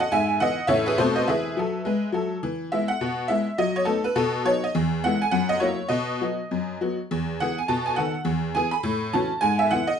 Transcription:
0.00 D#5 F#5
0.12 G#2 E5 G#5
0.40 E3 B3 E4 D#5 F#5
0.67 A2 E3 A3 C#4 C#5 E5
0.86 G#4 B4
0.98 B2 A3 C4 F#4 A4 C5
1.16 B4 D#5
1.28 E3 G#4 B4 E5
1.57 F#3 A4
1.85 G#3 B4
2.12 F#3 A4
2.43 E3
2.72 G#3 B3 E4 E5
2.88 F#5
3.01 B2
3.28 G#3 B3 E4 E5
3.58 F#3 D#5
3.76 C#5
3.85 A3 B3 D#4 A4
4.04 B4
4.16 B2 A4
4.45 F#3 B3 D#4 C#5
4.64 D#5
4.75 E2
5.04 G#3 B3 E4 F#5
5.22 G#5
5.31 F#2 F#5
5.49 D#5
5.60 F#3 A#3 E4 C#5
5.88 B2 D#5
6.21 F#3 B3 F#4
6.51 F#2
6.81 F#3 B3 F#4
7.11 E2
7.40 E3 B3 G#4 F#5
7.58 G#5
7.68 B2 A5
7.86 G#5
7.96 D#3 B3 A4 F#5
8.25 E2
8.55 E3 B3 G#4 G#5
8.71 B5
8.83 A2
9.13 E3 C#4 F#4 A5
9.41 G#2 G#5
9.59 E5
9.71 E3 B3 E4 F#5
9.87 D#5

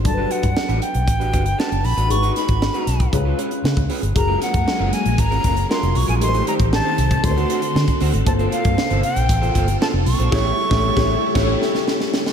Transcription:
0.04 G1 F#3 G3 D4 A4 A5, muted clean electric guitar stroke, kick, closed hi-hat
0.12 B4
0.17 G3 D4 F#4 B4
0.30 G3 D4 F#4 B4 F#5, closed hi-hat
0.43 G2, muted clean electric guitar stroke, kick, closed hi-hat
0.56 muted clean electric guitar stroke, snare
0.68 A1 G3 D4 F#4 B4, closed hi-hat
0.81 G5, muted clean electric guitar stroke, closed hi-hat
0.94 B1, muted clean electric guitar stroke, closed hi-hat
1.07 A1, muted clean electric guitar stroke, kick, closed hi-hat
1.20 G3 D4 F#4 B4, closed hi-hat
1.32 G1 G3 D4 F#4 B4, kick, closed hi-hat
1.45 muted clean electric guitar stroke, closed hi-hat
1.58 G3 D4 F#4 B4 A5, snare
1.71 F#1, muted clean electric guitar stroke, closed hi-hat
1.84 A#1 B5, muted clean electric guitar stroke, open hi-hat
1.97 A1 G3 D4 F#4 B4, closed hi-hat
2.09 G#1 G#3 D#4 F#4 B4 C#6, muted clean electric guitar stroke, closed hi-hat
2.23 G#3 D#4 F#4 B4, closed hi-hat
2.36 G#3 D#4 F#4 C#5 B5, snare, closed hi-hat
2.48 G#1, muted clean electric guitar stroke, kick, closed hi-hat
2.61 muted clean electric guitar stroke, snare
2.74 G#3 D#4 F#4 B4, closed hi-hat
2.87 B1, muted clean electric guitar stroke, snare, closed hi-hat
3.00 muted clean electric guitar stroke, kick, closed hi-hat
3.12 C#2 G#3 C#4 F4 B4, muted clean electric guitar stroke, kick, closed hi-hat
3.25 G#3 C#4 F4 B4
3.38 G#3 C#4 F4 B4, closed hi-hat
3.51 muted clean electric guitar stroke, closed hi-hat
3.64 C#3, muted clean electric guitar stroke, snare
3.77 C#2, muted clean electric guitar stroke, kick, closed hi-hat
3.89 G#3 C#4 F4 B4, open hi-hat
4.02 G1, muted clean electric guitar stroke, closed hi-hat
4.15 F#1 F#3 G#3 A#3 F#4 G#4 A#4 A#5, muted clean electric guitar stroke, kick, closed hi-hat
4.28 G#3 C#4 F4 A#4
4.41 G#3 C#4 F4 A#4 F#5, snare, closed hi-hat
4.54 F#2, muted clean electric guitar stroke, kick, closed hi-hat
4.67 muted clean electric guitar stroke, snare
4.79 F#1 G#3 C#4 F4 A#4
4.92 G#5, muted clean electric guitar stroke, snare, closed hi-hat
5.05 A#1, muted clean electric guitar stroke, closed hi-hat
5.18 G#1 A#5, muted clean electric guitar stroke, kick, closed hi-hat
5.31 G#3 C#4 F4 A#4, closed hi-hat
5.44 F#1 G#3 C#4 F4 A#4, kick, closed hi-hat
5.57 muted clean electric guitar stroke, closed hi-hat
5.69 G#3 C#4 F4 F#4 A#4 C6, snare
5.83 F1, muted clean electric guitar stroke, closed hi-hat
5.95 B1 C#6, muted clean electric guitar stroke, open hi-hat
6.08 A#1 G#3 C#4 F4 A#4 G#5, closed hi-hat
6.20 A1 D#3 A3 C4 D#4 G4 A4 A#4 C6, muted clean electric guitar stroke, closed hi-hat
6.28 C5
6.34 A3 D#4 G4 C5, closed hi-hat
6.47 A3 D#4 G4 D5 A#5, closed hi-hat
6.59 A1, kick, closed hi-hat
6.72 A5, muted clean electric guitar stroke, snare
6.85 A3 D#4 G4 C5
6.98 C2, muted clean electric guitar stroke, closed hi-hat
7.11 muted clean electric guitar stroke, kick, closed hi-hat
7.23 D2 D3 A3 D4 F#4 B4 C6, muted clean electric guitar stroke, kick, closed hi-hat
7.31 C5
7.37 A3 D4 F#4 C5, closed hi-hat
7.49 A3 D4 F#4 C5, closed hi-hat
7.62 muted clean electric guitar stroke, closed hi-hat
7.75 D3, muted clean electric guitar stroke, snare
7.88 muted clean electric guitar stroke, kick, closed hi-hat
8.00 D2 A3 D4 F#4 C5, open hi-hat
8.13 G#1, muted clean electric guitar stroke, closed hi-hat
8.25 G1 C3 A#3 F4 A4 C5 A5, muted clean electric guitar stroke, kick, closed hi-hat
8.39 A#3 F4 A4 C5, closed hi-hat
8.52 A#3 F4 A4 C5 F5, closed hi-hat
8.65 G2, muted clean electric guitar stroke, kick, closed hi-hat
8.78 muted clean electric guitar stroke, snare
8.90 G1 A#3 F4 A4 C5, closed hi-hat
9.03 G5, muted clean electric guitar stroke, closed hi-hat
9.16 A#1, muted clean electric guitar stroke, closed hi-hat
9.29 A1, muted clean electric guitar stroke, kick, closed hi-hat
9.41 A#3 F4 A4 C5, closed hi-hat
9.54 G1 A#3 F4 A4 C5, kick, closed hi-hat
9.68 muted clean electric guitar stroke, closed hi-hat
9.80 A#3 F4 A4 C5 A5, snare
9.93 F1, muted clean electric guitar stroke
10.06 B1 C#6, muted clean electric guitar stroke, open hi-hat
10.19 A#1 A#3 F4 A4 C5, closed hi-hat
10.31 A1 C#3 G3 A3 E4 G4 C#5, kick, snare, crash
10.69 A1 A3 E4 G4 C#5 E5, kick, snare
10.95 A1 A3 E4 G4 C#5, kick, snare
11.34 A1 A3 E4 G4 C#5, kick, snare, crash
11.62 snare
11.75 snare
11.88 snare
12.00 snare
12.14 snare
12.26 snare

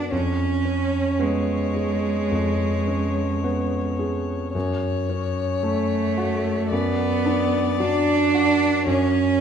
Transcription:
Already playing: B3 D4 F#4 D5
0.11 F2 C#4 C#5
0.65 C#4
1.19 G#3 B3
1.74 G#4
2.31 F2
2.87 C#4
3.44 B3
3.99 G#4
4.54 F#2 C#5
5.09 C#4
5.63 A3
6.18 F#4
6.71 F#2 B3 D5
7.26 D4
7.80 F#3 D4
8.34 F#4
8.87 F#2 C#4 C#5

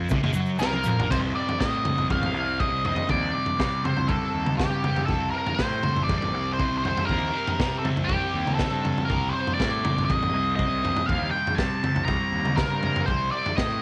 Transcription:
0.09 C2 C3, kick, mid tom, shaker
0.23 A#1 A#2, floor tom
0.33 F#2 F#3, shaker
0.46 shaker
0.59 C2 C3 A#4, snare, shaker
0.74 high tom
0.84 F2 F3, mid tom, shaker
0.98 A#1 A#2, floor tom
1.10 C2 C3 G3 C4 C5, kick, floor tom, crash
1.33 G3 C4 D5
1.49 floor tom
1.59 A2 C3 G3 C4 D#5, kick, snare
1.85 G3 C4, floor tom, mid tom
1.97 A1, floor tom
2.09 C3 G3 C4 F5, kick, floor tom
2.23 floor tom
2.34 C2
2.60 C3 G3 C4 D#5, kick
2.71 C2
2.85 G3 C4 D#5, floor tom
2.96 floor tom
3.08 D#2 C3 G3 C4 D5, kick, floor tom
3.33 G3 C4
3.46 floor tom
3.58 C3 G3 C4, kick, snare
3.83 G3 C4 C5, floor tom, mid tom
3.96 C2, floor tom
4.08 C3 G3 A4, kick, floor tom
4.12 C4
4.33 D#2
4.46 mid tom
4.57 C3 G3 G4, kick, snare, mid tom
4.61 C4
4.70 G2
4.83 G3 C4, floor tom, mid tom
4.96 floor tom
5.06 C2 C3 G3 A4, kick, floor tom
5.11 C4
5.30 C4 A#4
5.36 G3
5.47 floor tom
5.54 C5
5.58 A2 C3 G3 C4, kick, snare
5.83 G3 C4, floor tom, mid tom
5.96 A1, floor tom
6.04 D5
6.09 C3 G3 C4, kick, floor tom
6.22 floor tom
6.33 C2
6.53 C5
6.59 C3 G3 C4, kick
6.72 C2
6.78 C5
6.83 G3 C4, floor tom
6.97 floor tom
7.05 D#2 C3 A#4
7.09 G3 C4, kick, floor tom
7.33 G3 C4
7.47 floor tom
7.58 C3 G3 C4, kick, snare
7.79 C4 A4
7.85 G3, floor tom, mid tom
7.96 C2, floor tom
8.04 C3 G4
8.09 G3 C4, kick, floor tom
8.34 D#2
8.47 mid tom
8.54 C3 A4
8.59 G3 C4, kick, snare, mid tom
8.71 G2
8.82 G3 C4, floor tom, mid tom
8.98 floor tom
9.05 C3 G3 A#4
9.10 C2 C4, kick, floor tom
9.29 C5
9.34 G3 C4
9.47 floor tom
9.54 C3 D5
9.59 A2 G3 C4, kick, snare
9.83 G3 C4, floor tom, mid tom
9.96 A1, floor tom
10.05 C3 G3 D#5
10.09 C4, kick, floor tom
10.23 floor tom
10.33 C2
10.55 C3 G3 C4 D#5, kick
10.70 C2
10.83 G3 C4, floor tom
10.97 floor tom
11.06 D#2 C3 F5, kick, floor tom
11.10 G3 C4
11.31 C4 G5
11.36 G3
11.47 floor tom
11.55 C3 G3 A5, kick, snare
11.60 C4
11.82 G3 C4, floor tom, mid tom
11.95 C2, floor tom
12.05 C3 G3 A#5, kick, floor tom
12.09 C4
12.32 D#2
12.45 mid tom
12.56 C3 G3 A#4, kick, snare, mid tom
12.60 C4
12.68 G2
12.83 G3 C4, floor tom, mid tom
12.96 floor tom
13.06 C2 C3 G3 C4 C5, kick, floor tom
13.31 G3 C4 D5
13.46 floor tom
13.57 A2 C3 G3 C4 D#5, kick, snare

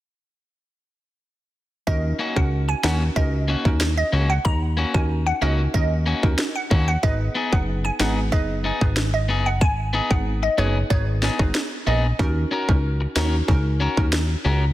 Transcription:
1.87 D#2 C#4 D#4 F#4 A#4 D#5, kick
2.19 A#3 C#4 F#4
2.36 C#2 C#4 D#4 F#4 A#4 F#5, kick
2.68 G#5, muted clean electric guitar stroke
2.83 D#2 A#3 C#4 D#4 F#4 A#4 F#5, snare
3.16 C#2 C#4 D#4 F#4 A#4 D#5, kick
3.48 A#3 C#4 F#4
3.65 D#2 C#4 D#4 F#4 A#4, kick
3.81 snare
3.98 D#5
4.12 C#2 A#3 C#4 F#4
4.30 F#5
4.45 D#2 A#5, kick
4.77 A#3 C#4 F#4
4.94 D#2 C#4 D#4 F#4 A#4 G#5, kick
5.26 F#5, muted clean electric guitar stroke
5.42 C#2 A#3 C#4 D#4 F#4 A#4 D#5
5.74 D#2 C#4 D#4 F#4 A#4 D#5, kick
6.06 A#3 C#4 F#4
6.23 D#2 C#4 D#4 F#4 A#4, kick
6.38 snare
6.56 F#5
6.70 D#2 A#3 C#4 F#4, kick
6.88 F#5
7.03 G#1 B3 D#4 G#4 B4 D#5, kick
7.35 B3 D#4 G#4
7.52 F#1 B3 D#4 G#4 B4 F#5, kick
7.85 G#5, muted clean electric guitar stroke
7.99 G#1 B3 D#4 G#4 B4 F#5, snare
8.32 F#1 B3 D#4 G#4 B4 D#5, kick
8.64 B3 D#4 G#4
8.81 G#1 B3 D#4 G#4 B4, kick
8.97 snare
9.14 D#5
9.29 F#1 B3 D#4 G#4
9.46 F#5
9.61 G#1 G#5, kick
9.93 B3 D#4 G#4
10.10 G#1 B3 D#4 G#4 B4 F#5, kick
10.43 D#5, muted clean electric guitar stroke
10.58 F#1 B3 D#4 G#4 B4 C#5
10.90 G#1 B3 D#4 G#4 B4 C#5, kick
11.22 B3 D#4 G#4, snare
11.39 G#1 B3 D#4 G#4 B4, kick, cross-stick
11.55 snare
11.87 A#1 B3 D#4 G#4 D#5
12.19 D#2 C#4 D#4 F#4 A#4, kick
12.51 C#4 F#4 A#4
12.68 C#2 C#4 D#4 F#4 A#4, kick
13.01 muted clean electric guitar stroke
13.16 D#2 C#4 D#4 F#4 A#4, snare
13.48 C#2 C#4 D#4 F#4 A#4, kick
13.80 C#4 F#4 A#4
13.97 D#2 C#4 D#4 F#4 A#4, kick
14.13 snare
14.45 C#2 C#4 F#4 A#4

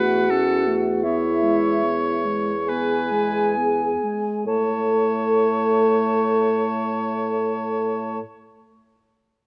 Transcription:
Already playing: E2 A3 F#4 B4 F#5
0.30 C#4 A4
0.67 A3
1.03 B3 E4 C#5 E5
1.43 G#3
1.84 B3
2.25 G#3
2.67 B3 G#4 B4 G#5
3.11 G#3
3.57 B3
4.04 G#3
4.46 A2 A3 A4 C#5 A5

